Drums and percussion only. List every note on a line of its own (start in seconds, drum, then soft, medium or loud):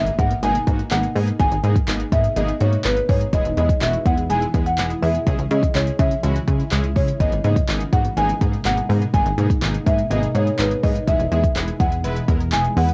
0.06 closed hi-hat medium
0.19 kick loud
0.19 closed hi-hat medium
0.31 closed hi-hat medium
0.43 closed hi-hat loud
0.55 closed hi-hat medium
0.67 kick medium
0.67 closed hi-hat medium
0.79 closed hi-hat soft
0.91 clap loud
0.91 closed hi-hat loud
1.03 closed hi-hat soft
1.16 open hi-hat medium
1.28 closed hi-hat medium
1.40 kick loud
1.40 closed hi-hat medium
1.52 closed hi-hat medium
1.64 closed hi-hat medium
1.76 kick loud
1.76 closed hi-hat medium
1.88 clap loud
1.88 closed hi-hat medium
2.00 closed hi-hat medium
2.12 kick loud
2.12 closed hi-hat medium
2.24 closed hi-hat medium
2.36 closed hi-hat loud
2.48 closed hi-hat medium
2.60 closed hi-hat medium
2.73 closed hi-hat medium
2.84 clap loud
2.84 closed hi-hat loud
2.97 closed hi-hat soft
3.09 kick loud
3.09 open hi-hat medium
3.21 closed hi-hat medium
3.33 kick loud
3.33 closed hi-hat loud
3.45 closed hi-hat medium
3.57 closed hi-hat medium
3.69 kick medium
3.69 closed hi-hat medium
3.81 clap loud
3.81 closed hi-hat medium
3.93 closed hi-hat medium
4.06 kick loud
4.06 closed hi-hat medium
4.18 closed hi-hat medium
4.30 closed hi-hat loud
4.42 closed hi-hat medium
4.54 kick medium
4.54 closed hi-hat medium
4.66 closed hi-hat medium
4.78 clap loud
4.78 closed hi-hat loud
4.90 closed hi-hat soft
5.03 open hi-hat medium
5.15 closed hi-hat medium
5.27 kick loud
5.27 closed hi-hat medium
5.39 closed hi-hat medium
5.51 closed hi-hat medium
5.63 kick medium
5.63 closed hi-hat medium
5.75 clap loud
5.75 closed hi-hat medium
5.87 closed hi-hat medium
5.99 kick loud
5.99 closed hi-hat medium
6.11 closed hi-hat medium
6.23 closed hi-hat loud
6.36 closed hi-hat medium
6.48 kick medium
6.48 closed hi-hat medium
6.60 closed hi-hat medium
6.71 clap loud
6.71 closed hi-hat loud
6.84 closed hi-hat soft
6.96 kick medium
6.96 open hi-hat medium
7.08 closed hi-hat medium
7.20 kick loud
7.20 closed hi-hat medium
7.32 closed hi-hat medium
7.44 closed hi-hat medium
7.56 kick loud
7.56 closed hi-hat medium
7.69 clap loud
7.69 closed hi-hat medium
7.81 closed hi-hat medium
7.93 kick loud
7.93 closed hi-hat medium
8.05 closed hi-hat medium
8.17 closed hi-hat loud
8.29 closed hi-hat medium
8.41 kick medium
8.41 closed hi-hat medium
8.53 closed hi-hat medium
8.65 clap loud
8.65 closed hi-hat loud
8.77 closed hi-hat soft
8.90 open hi-hat medium
9.02 closed hi-hat medium
9.14 kick loud
9.14 closed hi-hat loud
9.26 closed hi-hat medium
9.38 closed hi-hat medium
9.50 kick medium
9.50 closed hi-hat medium
9.62 clap loud
9.62 closed hi-hat medium
9.74 closed hi-hat medium
9.86 kick loud
9.86 closed hi-hat medium
9.98 closed hi-hat medium
10.11 closed hi-hat loud
10.23 closed hi-hat medium
10.35 closed hi-hat medium
10.47 closed hi-hat soft
10.59 clap loud
10.59 closed hi-hat loud
10.71 closed hi-hat soft
10.83 kick medium
10.83 open hi-hat medium
10.95 closed hi-hat medium
11.07 kick loud
11.07 closed hi-hat loud
11.20 closed hi-hat medium
11.32 closed hi-hat medium
11.44 kick medium
11.44 closed hi-hat medium
11.56 clap loud
11.56 closed hi-hat medium
11.68 closed hi-hat medium
11.80 kick loud
11.80 closed hi-hat medium
11.92 closed hi-hat medium
12.04 closed hi-hat loud
12.16 closed hi-hat medium
12.28 kick medium
12.28 closed hi-hat medium
12.41 closed hi-hat medium
12.52 clap loud
12.52 closed hi-hat loud
12.65 closed hi-hat soft
12.77 open hi-hat medium
12.89 closed hi-hat medium